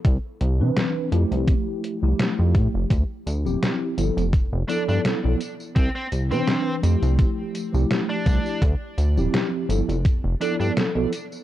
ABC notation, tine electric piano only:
X:1
M:4/4
L:1/16
Q:"Swing 16ths" 1/4=84
K:Flyd
V:1 name="Tine electric piano"
z3 [E,CDB]3 [F,A,EG]4- [F,A,EG] [F,A,EG]4- [F,A,EG] | z3 [F,CEG]3 [F,B,EA] z3 [F,B,EA]3 [F,B,EA] z2 | z3 [E,CDB]3 [F,A,EG]4- [F,A,EG] [F,A,EG]4- [F,A,EG] | z3 [F,CEG]3 [F,B,EA] z3 [F,B,EA]3 [F,B,EA] z2 |]